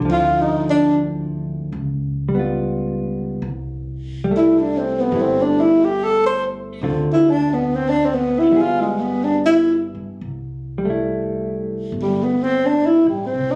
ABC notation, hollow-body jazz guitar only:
X:1
M:4/4
L:1/8
Q:"Swing" 1/4=71
K:C
V:1 name="Hollow-body jazz guitar"
[D,F,CE]4 z [G,_CF]3 | z2 [G,A,E]2 [G,A,E]4 | [D,A,CF]4 [G,B,_A]4 | z [G,A,E]6- [G,A,E] |]